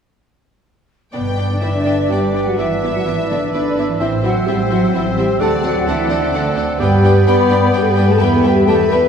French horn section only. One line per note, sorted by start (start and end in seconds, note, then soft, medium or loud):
1.14 1.48 B3 medium
1.51 1.56 D4 medium
1.61 1.67 E4 medium
1.74 2.10 D4 medium
2.11 2.46 G4 medium
2.47 2.58 F#4 medium
2.59 2.94 E4 medium
2.96 3.07 F#4 medium
3.05 3.29 E4 medium
3.30 3.51 D4 medium
3.52 3.87 D4 medium
3.89 3.94 E4 medium
4.01 4.11 E4 medium
4.22 4.46 F#4 medium
4.47 4.57 G4 medium
4.70 4.81 F#4 medium
4.93 5.04 E4 medium
5.16 5.39 G4 medium
5.39 5.63 A4 medium
5.62 5.86 F#4 medium
5.86 6.21 E4 medium
6.23 6.28 D4 medium
6.33 6.43 D4 medium
6.80 7.24 G4 loud
7.27 7.63 B4 medium
7.65 7.70 B4 medium
7.77 7.82 G4 medium
7.82 7.88 A4 medium
7.89 8.10 G4 medium
8.11 8.22 A4 medium
8.20 8.44 B4 medium
8.44 8.68 G4 loud
8.66 8.90 A4 medium
8.90 9.08 B4 loud